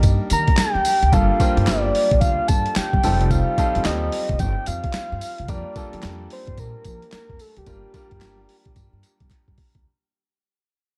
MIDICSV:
0, 0, Header, 1, 6, 480
1, 0, Start_track
1, 0, Key_signature, -2, "minor"
1, 0, Tempo, 545455
1, 992, Time_signature, 4, 2, 24, 8
1, 9657, End_track
2, 0, Start_track
2, 0, Title_t, "Soft synth lead"
2, 0, Program_c, 0, 80
2, 286, Note_on_c, 0, 82, 112
2, 517, Note_on_c, 0, 79, 112
2, 531, Note_off_c, 0, 82, 0
2, 999, Note_on_c, 0, 77, 115
2, 1012, Note_off_c, 0, 79, 0
2, 1466, Note_on_c, 0, 74, 97
2, 1479, Note_off_c, 0, 77, 0
2, 1936, Note_off_c, 0, 74, 0
2, 1941, Note_on_c, 0, 77, 104
2, 2182, Note_on_c, 0, 81, 98
2, 2195, Note_off_c, 0, 77, 0
2, 2430, Note_on_c, 0, 79, 107
2, 2443, Note_off_c, 0, 81, 0
2, 2906, Note_on_c, 0, 77, 116
2, 2919, Note_off_c, 0, 79, 0
2, 3392, Note_on_c, 0, 75, 95
2, 3406, Note_off_c, 0, 77, 0
2, 3864, Note_off_c, 0, 75, 0
2, 3869, Note_on_c, 0, 79, 106
2, 4111, Note_on_c, 0, 77, 104
2, 4124, Note_off_c, 0, 79, 0
2, 4833, Note_on_c, 0, 74, 94
2, 4846, Note_off_c, 0, 77, 0
2, 5312, Note_off_c, 0, 74, 0
2, 5566, Note_on_c, 0, 72, 116
2, 5803, Note_on_c, 0, 70, 111
2, 5816, Note_off_c, 0, 72, 0
2, 6277, Note_off_c, 0, 70, 0
2, 6282, Note_on_c, 0, 70, 95
2, 6521, Note_on_c, 0, 69, 97
2, 6535, Note_off_c, 0, 70, 0
2, 6669, Note_on_c, 0, 67, 88
2, 6682, Note_off_c, 0, 69, 0
2, 8195, Note_off_c, 0, 67, 0
2, 9657, End_track
3, 0, Start_track
3, 0, Title_t, "Grand piano"
3, 0, Program_c, 1, 0
3, 0, Control_c, 1, 64, 127
3, 0, Note_on_c, 1, 55, 82
3, 0, Note_on_c, 1, 58, 74
3, 0, Note_on_c, 1, 63, 77
3, 0, Note_on_c, 1, 70, 95
3, 987, Note_off_c, 1, 55, 0
3, 987, Note_on_c, 1, 55, 74
3, 991, Note_off_c, 1, 58, 0
3, 991, Note_on_c, 1, 58, 65
3, 994, Note_on_c, 1, 62, 70
3, 997, Note_on_c, 1, 65, 68
3, 999, Note_on_c, 1, 69, 86
3, 1002, Control_c, 1, 64, 0
3, 1006, Note_off_c, 1, 63, 0
3, 1008, Note_off_c, 1, 70, 0
3, 1135, Control_c, 1, 64, 127
3, 1160, Note_off_c, 1, 55, 0
3, 1161, Note_off_c, 1, 58, 0
3, 1163, Note_off_c, 1, 62, 0
3, 1165, Note_off_c, 1, 65, 0
3, 1166, Note_off_c, 1, 69, 0
3, 1228, Note_on_c, 1, 55, 82
3, 1231, Note_on_c, 1, 58, 76
3, 1232, Note_on_c, 1, 62, 74
3, 1236, Note_on_c, 1, 65, 76
3, 1238, Note_on_c, 1, 72, 85
3, 1840, Note_off_c, 1, 55, 0
3, 1841, Note_off_c, 1, 58, 0
3, 1842, Note_off_c, 1, 62, 0
3, 1844, Note_off_c, 1, 65, 0
3, 1845, Note_off_c, 1, 72, 0
3, 2670, Note_on_c, 1, 55, 84
3, 2671, Note_on_c, 1, 60, 70
3, 2675, Note_on_c, 1, 63, 74
3, 2679, Note_on_c, 1, 69, 90
3, 2680, Note_on_c, 1, 65, 73
3, 2682, Control_c, 1, 64, 0
3, 2834, Control_c, 1, 64, 127
3, 3080, Note_off_c, 1, 55, 0
3, 3080, Note_off_c, 1, 60, 0
3, 3082, Note_off_c, 1, 63, 0
3, 3084, Note_off_c, 1, 65, 0
3, 3084, Note_off_c, 1, 69, 0
3, 3147, Note_on_c, 1, 60, 76
3, 3148, Note_on_c, 1, 55, 84
3, 3153, Note_on_c, 1, 63, 80
3, 3153, Note_on_c, 1, 65, 78
3, 3157, Note_on_c, 1, 69, 87
3, 3759, Note_off_c, 1, 60, 0
3, 3760, Note_off_c, 1, 55, 0
3, 3762, Note_off_c, 1, 63, 0
3, 3763, Note_off_c, 1, 65, 0
3, 3764, Note_off_c, 1, 69, 0
3, 4828, Note_on_c, 1, 55, 74
3, 4832, Note_on_c, 1, 58, 71
3, 4834, Note_on_c, 1, 62, 68
3, 4837, Note_on_c, 1, 65, 68
3, 4838, Note_on_c, 1, 70, 84
3, 4844, Control_c, 1, 64, 0
3, 5000, Note_off_c, 1, 55, 0
3, 5002, Note_off_c, 1, 58, 0
3, 5003, Note_off_c, 1, 62, 0
3, 5004, Note_off_c, 1, 65, 0
3, 5005, Note_off_c, 1, 70, 0
3, 5015, Control_c, 1, 64, 127
3, 5067, Note_on_c, 1, 55, 78
3, 5068, Note_on_c, 1, 58, 74
3, 5070, Note_on_c, 1, 62, 75
3, 5073, Note_on_c, 1, 65, 77
3, 5076, Note_on_c, 1, 69, 92
3, 5680, Note_off_c, 1, 55, 0
3, 5680, Note_off_c, 1, 58, 0
3, 5681, Note_off_c, 1, 62, 0
3, 5683, Note_off_c, 1, 65, 0
3, 5684, Note_off_c, 1, 69, 0
3, 6746, Note_on_c, 1, 55, 72
3, 6751, Note_on_c, 1, 58, 68
3, 6752, Note_on_c, 1, 62, 68
3, 6753, Note_on_c, 1, 65, 70
3, 6758, Note_on_c, 1, 70, 83
3, 6762, Control_c, 1, 64, 0
3, 6912, Control_c, 1, 64, 127
3, 6919, Note_off_c, 1, 55, 0
3, 6921, Note_off_c, 1, 58, 0
3, 6922, Note_off_c, 1, 62, 0
3, 6923, Note_off_c, 1, 65, 0
3, 6925, Note_off_c, 1, 70, 0
3, 6986, Note_on_c, 1, 55, 81
3, 6989, Note_on_c, 1, 58, 71
3, 6990, Note_on_c, 1, 62, 78
3, 6995, Note_on_c, 1, 65, 73
3, 6995, Note_on_c, 1, 70, 93
3, 7599, Note_off_c, 1, 55, 0
3, 7601, Note_off_c, 1, 58, 0
3, 7601, Note_off_c, 1, 62, 0
3, 7603, Note_off_c, 1, 65, 0
3, 7603, Note_off_c, 1, 70, 0
3, 8681, Control_c, 1, 64, 0
3, 9657, End_track
4, 0, Start_track
4, 0, Title_t, "Upright bass"
4, 0, Program_c, 2, 32
4, 34, Note_on_c, 2, 43, 100
4, 157, Note_off_c, 2, 43, 0
4, 275, Note_on_c, 2, 51, 99
4, 397, Note_off_c, 2, 51, 0
4, 662, Note_on_c, 2, 39, 91
4, 735, Note_off_c, 2, 39, 0
4, 904, Note_on_c, 2, 38, 91
4, 976, Note_off_c, 2, 38, 0
4, 992, Note_on_c, 2, 31, 116
4, 1116, Note_off_c, 2, 31, 0
4, 1383, Note_on_c, 2, 43, 104
4, 1456, Note_off_c, 2, 43, 0
4, 1471, Note_on_c, 2, 31, 98
4, 1668, Note_off_c, 2, 31, 0
4, 1861, Note_on_c, 2, 34, 89
4, 1935, Note_off_c, 2, 34, 0
4, 1951, Note_on_c, 2, 38, 107
4, 2075, Note_off_c, 2, 38, 0
4, 2195, Note_on_c, 2, 43, 107
4, 2317, Note_off_c, 2, 43, 0
4, 2583, Note_on_c, 2, 31, 97
4, 2656, Note_off_c, 2, 31, 0
4, 2680, Note_on_c, 2, 29, 103
4, 2996, Note_off_c, 2, 29, 0
4, 3310, Note_on_c, 2, 41, 102
4, 3380, Note_off_c, 2, 41, 0
4, 3395, Note_on_c, 2, 39, 95
4, 3590, Note_off_c, 2, 39, 0
4, 3780, Note_on_c, 2, 29, 90
4, 3854, Note_off_c, 2, 29, 0
4, 3870, Note_on_c, 2, 31, 106
4, 3994, Note_off_c, 2, 31, 0
4, 4115, Note_on_c, 2, 41, 108
4, 4237, Note_off_c, 2, 41, 0
4, 4508, Note_on_c, 2, 43, 96
4, 4578, Note_off_c, 2, 43, 0
4, 4750, Note_on_c, 2, 36, 93
4, 4820, Note_off_c, 2, 36, 0
4, 4828, Note_on_c, 2, 41, 119
4, 4953, Note_off_c, 2, 41, 0
4, 5227, Note_on_c, 2, 53, 112
4, 5298, Note_off_c, 2, 53, 0
4, 5318, Note_on_c, 2, 41, 89
4, 5512, Note_off_c, 2, 41, 0
4, 5701, Note_on_c, 2, 43, 91
4, 5774, Note_off_c, 2, 43, 0
4, 5793, Note_on_c, 2, 46, 118
4, 5916, Note_off_c, 2, 46, 0
4, 6034, Note_on_c, 2, 53, 99
4, 6157, Note_off_c, 2, 53, 0
4, 6424, Note_on_c, 2, 41, 88
4, 6496, Note_off_c, 2, 41, 0
4, 6664, Note_on_c, 2, 38, 91
4, 6736, Note_off_c, 2, 38, 0
4, 6750, Note_on_c, 2, 31, 115
4, 6874, Note_off_c, 2, 31, 0
4, 7143, Note_on_c, 2, 43, 107
4, 7216, Note_off_c, 2, 43, 0
4, 7229, Note_on_c, 2, 31, 105
4, 7426, Note_off_c, 2, 31, 0
4, 7621, Note_on_c, 2, 34, 90
4, 7694, Note_off_c, 2, 34, 0
4, 7712, Note_on_c, 2, 43, 114
4, 7835, Note_off_c, 2, 43, 0
4, 7859, Note_on_c, 2, 43, 91
4, 7933, Note_off_c, 2, 43, 0
4, 8102, Note_on_c, 2, 31, 102
4, 8175, Note_off_c, 2, 31, 0
4, 8345, Note_on_c, 2, 43, 98
4, 8417, Note_off_c, 2, 43, 0
4, 8582, Note_on_c, 2, 38, 95
4, 8655, Note_off_c, 2, 38, 0
4, 9657, End_track
5, 0, Start_track
5, 0, Title_t, "Muted upright bass strokes"
5, 513, Note_on_c, 9, 29, 47
5, 601, Note_off_c, 9, 29, 0
5, 1234, Note_on_c, 9, 29, 50
5, 1322, Note_off_c, 9, 29, 0
5, 2434, Note_on_c, 9, 29, 47
5, 2522, Note_off_c, 9, 29, 0
5, 3152, Note_on_c, 9, 29, 53
5, 3240, Note_off_c, 9, 29, 0
5, 4360, Note_on_c, 9, 29, 52
5, 4448, Note_off_c, 9, 29, 0
5, 5067, Note_on_c, 9, 29, 53
5, 5155, Note_off_c, 9, 29, 0
5, 6276, Note_on_c, 9, 29, 50
5, 6364, Note_off_c, 9, 29, 0
5, 6988, Note_on_c, 9, 29, 55
5, 7076, Note_off_c, 9, 29, 0
5, 9657, End_track
6, 0, Start_track
6, 0, Title_t, "Drums"
6, 26, Note_on_c, 9, 42, 78
6, 27, Note_on_c, 9, 54, 64
6, 32, Note_on_c, 9, 36, 99
6, 114, Note_off_c, 9, 42, 0
6, 115, Note_off_c, 9, 54, 0
6, 120, Note_off_c, 9, 36, 0
6, 264, Note_on_c, 9, 42, 90
6, 267, Note_on_c, 9, 54, 78
6, 352, Note_off_c, 9, 42, 0
6, 355, Note_off_c, 9, 54, 0
6, 418, Note_on_c, 9, 42, 55
6, 422, Note_on_c, 9, 36, 103
6, 502, Note_on_c, 9, 39, 94
6, 506, Note_off_c, 9, 42, 0
6, 507, Note_on_c, 9, 38, 109
6, 507, Note_on_c, 9, 54, 105
6, 508, Note_on_c, 9, 42, 80
6, 510, Note_off_c, 9, 36, 0
6, 590, Note_off_c, 9, 39, 0
6, 595, Note_off_c, 9, 38, 0
6, 595, Note_off_c, 9, 54, 0
6, 596, Note_off_c, 9, 42, 0
6, 746, Note_on_c, 9, 46, 67
6, 747, Note_on_c, 9, 54, 75
6, 834, Note_off_c, 9, 46, 0
6, 835, Note_off_c, 9, 54, 0
6, 903, Note_on_c, 9, 42, 54
6, 991, Note_off_c, 9, 42, 0
6, 991, Note_on_c, 9, 36, 121
6, 991, Note_on_c, 9, 42, 67
6, 992, Note_on_c, 9, 54, 67
6, 1079, Note_off_c, 9, 36, 0
6, 1079, Note_off_c, 9, 42, 0
6, 1080, Note_off_c, 9, 54, 0
6, 1231, Note_on_c, 9, 36, 100
6, 1231, Note_on_c, 9, 42, 71
6, 1231, Note_on_c, 9, 54, 63
6, 1319, Note_off_c, 9, 36, 0
6, 1319, Note_off_c, 9, 42, 0
6, 1319, Note_off_c, 9, 54, 0
6, 1384, Note_on_c, 9, 42, 54
6, 1468, Note_on_c, 9, 39, 77
6, 1469, Note_off_c, 9, 39, 0
6, 1469, Note_on_c, 9, 39, 96
6, 1471, Note_off_c, 9, 42, 0
6, 1471, Note_on_c, 9, 42, 71
6, 1472, Note_on_c, 9, 54, 101
6, 1475, Note_on_c, 9, 38, 108
6, 1557, Note_off_c, 9, 39, 0
6, 1559, Note_off_c, 9, 42, 0
6, 1560, Note_off_c, 9, 54, 0
6, 1563, Note_off_c, 9, 38, 0
6, 1715, Note_on_c, 9, 46, 76
6, 1803, Note_off_c, 9, 46, 0
6, 1860, Note_on_c, 9, 42, 62
6, 1862, Note_on_c, 9, 36, 99
6, 1947, Note_off_c, 9, 42, 0
6, 1947, Note_on_c, 9, 42, 71
6, 1948, Note_on_c, 9, 54, 63
6, 1950, Note_off_c, 9, 36, 0
6, 1951, Note_on_c, 9, 36, 103
6, 2035, Note_off_c, 9, 42, 0
6, 2036, Note_off_c, 9, 54, 0
6, 2039, Note_off_c, 9, 36, 0
6, 2186, Note_on_c, 9, 42, 90
6, 2189, Note_on_c, 9, 54, 81
6, 2192, Note_on_c, 9, 36, 112
6, 2274, Note_off_c, 9, 42, 0
6, 2277, Note_off_c, 9, 54, 0
6, 2280, Note_off_c, 9, 36, 0
6, 2338, Note_on_c, 9, 42, 52
6, 2425, Note_on_c, 9, 39, 91
6, 2426, Note_off_c, 9, 42, 0
6, 2431, Note_off_c, 9, 39, 0
6, 2431, Note_on_c, 9, 38, 122
6, 2431, Note_on_c, 9, 39, 87
6, 2431, Note_on_c, 9, 54, 98
6, 2432, Note_on_c, 9, 42, 81
6, 2519, Note_off_c, 9, 38, 0
6, 2519, Note_off_c, 9, 39, 0
6, 2519, Note_off_c, 9, 54, 0
6, 2520, Note_off_c, 9, 42, 0
6, 2581, Note_on_c, 9, 36, 95
6, 2669, Note_off_c, 9, 36, 0
6, 2670, Note_on_c, 9, 46, 71
6, 2671, Note_on_c, 9, 54, 69
6, 2758, Note_off_c, 9, 46, 0
6, 2759, Note_off_c, 9, 54, 0
6, 2822, Note_on_c, 9, 42, 54
6, 2909, Note_on_c, 9, 36, 119
6, 2910, Note_off_c, 9, 42, 0
6, 2910, Note_on_c, 9, 42, 73
6, 2911, Note_on_c, 9, 54, 69
6, 2997, Note_off_c, 9, 36, 0
6, 2998, Note_off_c, 9, 42, 0
6, 2999, Note_off_c, 9, 54, 0
6, 3149, Note_on_c, 9, 36, 100
6, 3149, Note_on_c, 9, 54, 65
6, 3150, Note_on_c, 9, 42, 75
6, 3237, Note_off_c, 9, 36, 0
6, 3237, Note_off_c, 9, 54, 0
6, 3238, Note_off_c, 9, 42, 0
6, 3301, Note_on_c, 9, 42, 55
6, 3385, Note_on_c, 9, 39, 93
6, 3387, Note_off_c, 9, 42, 0
6, 3387, Note_on_c, 9, 42, 74
6, 3388, Note_on_c, 9, 54, 103
6, 3390, Note_off_c, 9, 39, 0
6, 3390, Note_on_c, 9, 38, 126
6, 3390, Note_on_c, 9, 39, 72
6, 3475, Note_off_c, 9, 42, 0
6, 3476, Note_off_c, 9, 54, 0
6, 3478, Note_off_c, 9, 38, 0
6, 3478, Note_off_c, 9, 39, 0
6, 3629, Note_on_c, 9, 46, 78
6, 3717, Note_off_c, 9, 46, 0
6, 3777, Note_on_c, 9, 42, 57
6, 3779, Note_on_c, 9, 36, 99
6, 3864, Note_off_c, 9, 42, 0
6, 3864, Note_on_c, 9, 42, 81
6, 3866, Note_on_c, 9, 54, 69
6, 3867, Note_off_c, 9, 36, 0
6, 3869, Note_on_c, 9, 36, 99
6, 3952, Note_off_c, 9, 42, 0
6, 3954, Note_off_c, 9, 54, 0
6, 3957, Note_off_c, 9, 36, 0
6, 4104, Note_on_c, 9, 42, 87
6, 4107, Note_on_c, 9, 54, 77
6, 4192, Note_off_c, 9, 42, 0
6, 4195, Note_off_c, 9, 54, 0
6, 4256, Note_on_c, 9, 42, 54
6, 4260, Note_on_c, 9, 36, 100
6, 4340, Note_on_c, 9, 39, 93
6, 4344, Note_off_c, 9, 42, 0
6, 4345, Note_on_c, 9, 54, 103
6, 4346, Note_on_c, 9, 38, 111
6, 4346, Note_on_c, 9, 42, 84
6, 4347, Note_off_c, 9, 39, 0
6, 4347, Note_on_c, 9, 39, 87
6, 4348, Note_off_c, 9, 36, 0
6, 4433, Note_off_c, 9, 54, 0
6, 4434, Note_off_c, 9, 38, 0
6, 4434, Note_off_c, 9, 42, 0
6, 4435, Note_off_c, 9, 39, 0
6, 4587, Note_on_c, 9, 46, 70
6, 4588, Note_on_c, 9, 54, 71
6, 4675, Note_off_c, 9, 46, 0
6, 4676, Note_off_c, 9, 54, 0
6, 4738, Note_on_c, 9, 42, 53
6, 4826, Note_off_c, 9, 42, 0
6, 4826, Note_on_c, 9, 42, 77
6, 4827, Note_on_c, 9, 36, 127
6, 4827, Note_on_c, 9, 54, 68
6, 4914, Note_off_c, 9, 42, 0
6, 4915, Note_off_c, 9, 36, 0
6, 4915, Note_off_c, 9, 54, 0
6, 5066, Note_on_c, 9, 54, 62
6, 5067, Note_on_c, 9, 42, 68
6, 5068, Note_on_c, 9, 36, 100
6, 5154, Note_off_c, 9, 54, 0
6, 5155, Note_off_c, 9, 42, 0
6, 5156, Note_off_c, 9, 36, 0
6, 5219, Note_on_c, 9, 42, 56
6, 5302, Note_on_c, 9, 39, 96
6, 5304, Note_off_c, 9, 42, 0
6, 5304, Note_on_c, 9, 42, 74
6, 5305, Note_on_c, 9, 54, 99
6, 5306, Note_off_c, 9, 39, 0
6, 5306, Note_on_c, 9, 39, 83
6, 5308, Note_on_c, 9, 38, 117
6, 5392, Note_off_c, 9, 42, 0
6, 5393, Note_off_c, 9, 54, 0
6, 5394, Note_off_c, 9, 39, 0
6, 5396, Note_off_c, 9, 38, 0
6, 5547, Note_on_c, 9, 46, 82
6, 5635, Note_off_c, 9, 46, 0
6, 5697, Note_on_c, 9, 42, 59
6, 5699, Note_on_c, 9, 36, 93
6, 5785, Note_off_c, 9, 42, 0
6, 5786, Note_on_c, 9, 42, 78
6, 5787, Note_off_c, 9, 36, 0
6, 5788, Note_on_c, 9, 54, 69
6, 5789, Note_on_c, 9, 36, 92
6, 5874, Note_off_c, 9, 42, 0
6, 5876, Note_off_c, 9, 54, 0
6, 5877, Note_off_c, 9, 36, 0
6, 6024, Note_on_c, 9, 42, 86
6, 6027, Note_on_c, 9, 54, 79
6, 6030, Note_on_c, 9, 36, 104
6, 6112, Note_off_c, 9, 42, 0
6, 6115, Note_off_c, 9, 54, 0
6, 6118, Note_off_c, 9, 36, 0
6, 6181, Note_on_c, 9, 42, 52
6, 6265, Note_on_c, 9, 39, 92
6, 6268, Note_off_c, 9, 39, 0
6, 6268, Note_on_c, 9, 39, 83
6, 6269, Note_off_c, 9, 42, 0
6, 6270, Note_on_c, 9, 54, 90
6, 6271, Note_on_c, 9, 38, 112
6, 6271, Note_on_c, 9, 42, 86
6, 6356, Note_off_c, 9, 39, 0
6, 6358, Note_off_c, 9, 54, 0
6, 6359, Note_off_c, 9, 38, 0
6, 6359, Note_off_c, 9, 42, 0
6, 6421, Note_on_c, 9, 36, 99
6, 6506, Note_on_c, 9, 46, 75
6, 6507, Note_on_c, 9, 54, 73
6, 6509, Note_off_c, 9, 36, 0
6, 6594, Note_off_c, 9, 46, 0
6, 6595, Note_off_c, 9, 54, 0
6, 6658, Note_on_c, 9, 42, 57
6, 6745, Note_off_c, 9, 42, 0
6, 6745, Note_on_c, 9, 42, 79
6, 6746, Note_on_c, 9, 54, 68
6, 6747, Note_on_c, 9, 36, 120
6, 6833, Note_off_c, 9, 42, 0
6, 6834, Note_off_c, 9, 54, 0
6, 6835, Note_off_c, 9, 36, 0
6, 6987, Note_on_c, 9, 38, 65
6, 6987, Note_on_c, 9, 42, 71
6, 6987, Note_on_c, 9, 54, 70
6, 6988, Note_on_c, 9, 36, 103
6, 7075, Note_off_c, 9, 38, 0
6, 7075, Note_off_c, 9, 42, 0
6, 7075, Note_off_c, 9, 54, 0
6, 7076, Note_off_c, 9, 36, 0
6, 7138, Note_on_c, 9, 42, 54
6, 7142, Note_on_c, 9, 36, 101
6, 7223, Note_on_c, 9, 39, 87
6, 7225, Note_off_c, 9, 42, 0
6, 7225, Note_on_c, 9, 42, 79
6, 7226, Note_on_c, 9, 54, 96
6, 7228, Note_on_c, 9, 38, 121
6, 7230, Note_off_c, 9, 36, 0
6, 7234, Note_off_c, 9, 39, 0
6, 7234, Note_on_c, 9, 39, 76
6, 7313, Note_off_c, 9, 42, 0
6, 7314, Note_off_c, 9, 54, 0
6, 7316, Note_off_c, 9, 38, 0
6, 7322, Note_off_c, 9, 39, 0
6, 7470, Note_on_c, 9, 46, 81
6, 7558, Note_off_c, 9, 46, 0
6, 7616, Note_on_c, 9, 42, 57
6, 7620, Note_on_c, 9, 36, 95
6, 7704, Note_off_c, 9, 42, 0
6, 7708, Note_off_c, 9, 36, 0
6, 7708, Note_on_c, 9, 42, 80
6, 7710, Note_on_c, 9, 36, 100
6, 7710, Note_on_c, 9, 54, 71
6, 7796, Note_off_c, 9, 42, 0
6, 7798, Note_off_c, 9, 36, 0
6, 7798, Note_off_c, 9, 54, 0
6, 7949, Note_on_c, 9, 42, 86
6, 7952, Note_on_c, 9, 54, 79
6, 7954, Note_on_c, 9, 39, 64
6, 8037, Note_off_c, 9, 42, 0
6, 8040, Note_off_c, 9, 54, 0
6, 8042, Note_off_c, 9, 39, 0
6, 8099, Note_on_c, 9, 42, 53
6, 8101, Note_on_c, 9, 36, 100
6, 8187, Note_off_c, 9, 42, 0
6, 8189, Note_off_c, 9, 36, 0
6, 8189, Note_on_c, 9, 39, 87
6, 8191, Note_on_c, 9, 36, 65
6, 8193, Note_on_c, 9, 42, 85
6, 8277, Note_off_c, 9, 39, 0
6, 8279, Note_off_c, 9, 36, 0
6, 8281, Note_off_c, 9, 42, 0
6, 8342, Note_on_c, 9, 36, 70
6, 8428, Note_on_c, 9, 46, 73
6, 8430, Note_off_c, 9, 36, 0
6, 8430, Note_on_c, 9, 36, 105
6, 8516, Note_off_c, 9, 46, 0
6, 8518, Note_off_c, 9, 36, 0
6, 8579, Note_on_c, 9, 42, 55
6, 8581, Note_on_c, 9, 36, 102
6, 8667, Note_off_c, 9, 42, 0
6, 8669, Note_off_c, 9, 36, 0
6, 9657, End_track
0, 0, End_of_file